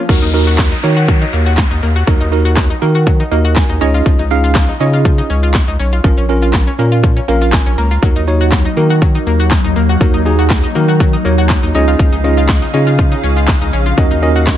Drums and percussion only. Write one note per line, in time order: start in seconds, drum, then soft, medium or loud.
0.09 kick loud
0.09 crash loud
0.09 shaker medium
0.22 closed hi-hat soft
0.22 shaker medium
0.34 open hi-hat medium
0.34 shaker medium
0.47 closed hi-hat medium
0.47 shaker medium
0.58 kick loud
0.58 snare loud
0.58 clap loud
0.58 shaker medium
0.72 closed hi-hat medium
0.72 shaker medium
0.83 open hi-hat medium
0.83 shaker medium
0.96 closed hi-hat medium
0.96 shaker medium
1.08 kick loud
1.08 shaker medium
1.21 closed hi-hat medium
1.21 shaker medium
1.33 open hi-hat medium
1.33 shaker medium
1.46 closed hi-hat loud
1.46 shaker loud
1.57 kick loud
1.57 snare medium
1.57 clap loud
1.57 shaker medium
1.71 closed hi-hat medium
1.71 shaker medium
1.83 open hi-hat medium
1.83 shaker medium
1.96 closed hi-hat medium
1.96 shaker medium
2.07 kick loud
2.07 shaker medium
2.21 closed hi-hat medium
2.21 shaker medium
2.32 open hi-hat medium
2.32 shaker medium
2.45 closed hi-hat medium
2.45 shaker medium
2.57 kick loud
2.57 snare loud
2.57 clap loud
2.57 shaker medium
2.70 closed hi-hat medium
2.70 shaker medium
2.82 open hi-hat medium
2.82 shaker medium
2.95 closed hi-hat medium
2.95 shaker medium
3.06 kick loud
3.06 shaker medium
3.20 closed hi-hat medium
3.20 shaker medium
3.32 open hi-hat medium
3.32 shaker medium
3.45 closed hi-hat loud
3.45 shaker loud
3.56 kick loud
3.56 snare loud
3.56 clap loud
3.56 shaker medium
3.69 closed hi-hat medium
3.69 shaker medium
3.81 open hi-hat medium
3.81 shaker medium
3.94 closed hi-hat medium
3.94 shaker medium
4.06 kick loud
4.06 shaker medium
4.19 closed hi-hat medium
4.19 shaker medium
4.31 open hi-hat medium
4.31 shaker medium
4.44 closed hi-hat medium
4.44 shaker medium
4.55 kick loud
4.55 snare loud
4.55 clap loud
4.55 shaker medium
4.68 closed hi-hat medium
4.68 shaker medium
4.80 open hi-hat medium
4.80 shaker medium
4.93 closed hi-hat medium
4.93 shaker medium
5.05 kick loud
5.05 shaker medium
5.18 closed hi-hat medium
5.18 shaker medium
5.30 open hi-hat medium
5.30 shaker medium
5.43 closed hi-hat loud
5.43 shaker loud
5.54 kick loud
5.54 snare loud
5.54 clap loud
5.54 shaker medium
5.68 closed hi-hat medium
5.68 shaker medium
5.79 open hi-hat medium
5.79 shaker medium
5.92 closed hi-hat medium
5.92 shaker medium
6.04 kick loud
6.04 shaker medium
6.17 closed hi-hat medium
6.17 shaker medium
6.29 open hi-hat medium
6.29 shaker medium
6.42 closed hi-hat medium
6.42 shaker medium
6.54 kick loud
6.54 snare loud
6.54 clap loud
6.54 shaker medium
6.67 closed hi-hat medium
6.67 shaker medium
6.79 open hi-hat medium
6.79 shaker medium
6.92 closed hi-hat medium
6.92 shaker medium
7.03 kick loud
7.03 shaker medium
7.17 closed hi-hat medium
7.17 shaker medium
7.29 open hi-hat medium
7.29 shaker medium
7.41 closed hi-hat loud
7.41 shaker loud
7.53 kick loud
7.53 snare loud
7.53 clap loud
7.53 shaker medium
7.66 closed hi-hat medium
7.66 shaker medium
7.78 open hi-hat medium
7.78 shaker medium
7.91 closed hi-hat medium
7.91 shaker medium
8.03 kick loud
8.03 shaker medium
8.16 closed hi-hat medium
8.16 shaker soft
8.27 open hi-hat medium
8.27 shaker medium
8.41 closed hi-hat medium
8.41 shaker medium
8.52 kick loud
8.52 snare loud
8.52 clap loud
8.52 shaker medium
8.65 closed hi-hat medium
8.65 shaker medium
8.77 open hi-hat medium
8.77 shaker medium
8.90 closed hi-hat medium
8.90 shaker medium
9.02 kick loud
9.02 shaker medium
9.15 closed hi-hat medium
9.15 shaker medium
9.27 open hi-hat medium
9.27 shaker medium
9.40 closed hi-hat loud
9.40 shaker loud
9.51 kick loud
9.51 snare loud
9.51 clap loud
9.51 shaker medium
9.64 closed hi-hat medium
9.64 shaker medium
9.76 open hi-hat medium
9.76 shaker medium
9.89 closed hi-hat medium
9.89 shaker medium
10.01 kick loud
10.01 shaker medium
10.14 closed hi-hat medium
10.14 shaker medium
10.26 open hi-hat medium
10.26 shaker medium
10.39 closed hi-hat medium
10.39 shaker medium
10.50 kick loud
10.50 snare loud
10.50 clap loud
10.50 shaker medium
10.63 closed hi-hat medium
10.63 shaker medium
10.75 open hi-hat medium
10.75 shaker medium
10.88 closed hi-hat medium
10.88 shaker medium
11.00 kick loud
11.00 shaker medium
11.13 closed hi-hat medium
11.13 shaker medium
11.25 open hi-hat medium
11.25 shaker medium
11.38 closed hi-hat loud
11.38 shaker loud
11.49 kick loud
11.49 snare loud
11.49 clap loud
11.49 shaker medium
11.63 closed hi-hat medium
11.63 shaker medium
11.75 open hi-hat medium
11.75 shaker medium
11.88 closed hi-hat medium
11.88 shaker medium
11.99 kick loud
11.99 shaker medium
12.13 closed hi-hat medium
12.13 shaker medium
12.24 open hi-hat medium
12.24 shaker medium
12.37 closed hi-hat medium
12.37 shaker medium
12.49 kick loud
12.49 snare loud
12.49 clap loud
12.49 shaker medium
12.62 closed hi-hat medium
12.62 shaker medium
12.74 open hi-hat medium
12.74 shaker medium
12.87 closed hi-hat medium
12.87 shaker medium
12.99 kick loud
12.99 shaker medium
13.12 closed hi-hat medium
13.12 shaker medium
13.24 open hi-hat medium
13.24 shaker medium
13.37 closed hi-hat loud
13.37 shaker loud
13.48 kick loud
13.48 snare loud
13.48 clap loud
13.48 shaker medium
13.61 closed hi-hat medium
13.61 shaker medium
13.73 open hi-hat medium
13.73 shaker medium
13.86 closed hi-hat medium
13.86 shaker medium
13.98 kick loud
13.98 shaker medium
14.11 closed hi-hat medium
14.11 shaker medium
14.22 open hi-hat medium
14.22 shaker medium
14.36 closed hi-hat medium
14.36 shaker medium
14.47 kick loud
14.47 snare loud
14.47 clap loud
14.47 shaker medium